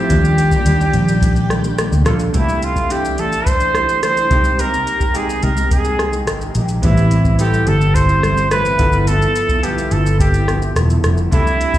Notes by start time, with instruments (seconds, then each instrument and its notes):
Already playing: synth keys A3 C4 E4 G4, clean electric guitar C4 E4, trumpet G4
0.09 fingered electric bass D#2, clean electric guitar D#3 G3 A#3 D4, string machine D#3 D5 G5, synth keys A#3 D4 F4 G4, kick, closed hi-hat, shaker
0.25 shaker
0.37 clean electric guitar D#3 G3 A#3 D4, closed hi-hat, shaker
0.52 clean electric guitar G3 A#3 D4, kick, shaker
0.65 fingered electric bass D#2, clean electric guitar D#3 G3 A#3 D4, closed hi-hat, shaker
0.81 shaker
0.93 fingered electric bass A#1, clean electric guitar D#3 G3 A#3 D4, closed hi-hat, shaker
1.07 clean electric guitar G3 A#3 D4, shaker
1.22 kick, closed hi-hat, shaker
1.36 shaker
1.49 clean electric guitar D#3 G3 A#3 D4, cross-stick, closed hi-hat, shaker
1.63 clean electric guitar G3 A#3 D4, shaker
1.78 clean electric guitar D#3 G3 A#3 D4, cross-stick, closed hi-hat, shaker
1.91 fingered electric bass D2, clean electric guitar G3 A#3 D4, shaker
2.05 fingered electric bass A#1, clean electric guitar D#3 G3 A#3 D4, synth keys A#3 D4 F4 A4, cross-stick, closed hi-hat, shaker
2.19 shaker
2.33 fingered electric bass C2, clean electric guitar C3 E3 A3 D4, synth keys A3 D4 E4 G4, trumpet E4, kick, closed hi-hat, shaker
2.47 clean electric guitar E3 A3 D4, shaker
2.63 trumpet F4, closed hi-hat, shaker
2.75 clean electric guitar E3 A3 D4, kick, shaker
2.89 clean electric guitar C3 E3 A3 D4, synth keys A3 D4 E4 G4, trumpet G4, closed hi-hat, shaker
3.05 shaker
3.17 fingered electric bass A1, clean electric guitar C3 E3 A3 D4, trumpet A4, closed hi-hat, shaker
3.31 clean electric guitar E3 A3 D4, shaker
3.46 trumpet C5, kick, closed hi-hat, shaker
3.59 clean electric guitar E3 A3 D4, shaker
3.73 clean electric guitar C3 E3 A3 D4, cross-stick, closed hi-hat, shaker
3.87 clean electric guitar E3 A3 D4, shaker
4.02 clean electric guitar C3 E3 A3 D4, trumpet C5, cross-stick, closed hi-hat, shaker
4.17 shaker
4.30 fingered electric bass C2, clean electric guitar D#3 G#3 D#4 G4, synth keys A#3 C4 D#4 G4, kick, closed hi-hat, shaker
4.44 shaker
4.57 clean electric guitar C3 D#3 G#3 D#4 G4, trumpet A#4, closed hi-hat, shaker
4.71 clean electric guitar G#3 D#4 G4, shaker
4.87 closed hi-hat, shaker
4.99 clean electric guitar G#3 D#4 G4, kick, shaker
5.13 clean electric guitar C3 D#3 G#3 D#4 G4, synth keys A#3 C4 D#4 G4, trumpet G#4, closed hi-hat, shaker
5.30 shaker
5.41 fingered electric bass C2, clean electric guitar D#3 G#3 D#4 G4, trumpet A#4, closed hi-hat, shaker
5.57 clean electric guitar G#3 D#4, shaker
5.71 trumpet G#4, kick, closed hi-hat, shaker
5.84 clean electric guitar G#3 D#4 G4, shaker
5.98 clean electric guitar D#3 G#3 D#4 G4, cross-stick, closed hi-hat, shaker
6.12 clean electric guitar G#3 D#4 G4, shaker
6.26 fingered electric bass G#1, clean electric guitar C3 D#3 G#3 D#4 G4, cross-stick, closed hi-hat, shaker
6.41 shaker
6.55 fingered electric bass A#1, clean electric guitar D#3 G#3 D#4 G4, closed hi-hat, shaker
6.68 shaker
6.82 fingered electric bass A1, clean electric guitar A2 E3 G3 C4 E4, synth keys B3 C4 E4 G4, trumpet E4, kick, closed hi-hat, shaker
6.96 clean electric guitar G3 C4 E4, shaker
7.11 closed hi-hat, shaker
7.24 clean electric guitar G3 C4 E4, kick, shaker
7.38 clean electric guitar A2 E3 G3 C4 E4, synth keys B3 C4 E4 A4, trumpet G4, closed hi-hat, shaker
7.54 shaker
7.65 fingered electric bass G1, clean electric guitar E3 G3 C4 E4, trumpet A4, closed hi-hat, shaker
7.80 clean electric guitar G3 C4 E4, shaker
7.95 trumpet C5, kick, closed hi-hat, shaker
8.08 clean electric guitar G3 C4 E4, shaker
8.22 clean electric guitar E3 G3 C4 E4, cross-stick, closed hi-hat, shaker
8.36 clean electric guitar G3 C4 E4, shaker
8.51 clean electric guitar A2 E3 G3 C4 E4, trumpet B4, cross-stick, closed hi-hat, shaker
8.65 shaker
8.78 fingered electric bass G1, clean electric guitar D3 F3 B3 E4, synth keys B3 E4 F4 A4, kick, closed hi-hat, shaker
8.92 shaker
9.07 clean electric guitar G2 D3 F3 B3 E4, trumpet A4, closed hi-hat, shaker
9.22 clean electric guitar F3 B3 E4, shaker
9.36 closed hi-hat, shaker
9.49 clean electric guitar F3 B3 E4, kick, shaker
9.63 clean electric guitar G2 D3 F3 B3 E4, synth keys B3 E4 F4 A4, trumpet G4, closed hi-hat, shaker
9.78 shaker
9.91 fingered electric bass G1, clean electric guitar D3 F3 B3 E4, trumpet A4, closed hi-hat, shaker
10.06 clean electric guitar F3 B3 E4, shaker
10.20 trumpet G4, kick, closed hi-hat, shaker
10.33 clean electric guitar F3 B3 E4, shaker
10.47 clean electric guitar D3 F3 B3 E4, cross-stick, closed hi-hat, shaker
10.61 clean electric guitar F3 B3 E4, shaker
10.75 fingered electric bass E1, clean electric guitar G2 D3 F3 B3 E4, cross-stick, closed hi-hat, shaker
10.90 shaker
11.03 fingered electric bass F1, clean electric guitar D3 F3 B3 E4, cross-stick, closed hi-hat, shaker
11.17 shaker
11.31 fingered electric bass C2, clean electric guitar C3 E3 A3 D4 G4, synth keys D4 E4 G4 A4, trumpet E4, kick, closed hi-hat, shaker
11.45 clean electric guitar A3 D4 G4, shaker
11.61 closed hi-hat, shaker
11.73 clean electric guitar D4 G4, kick, shaker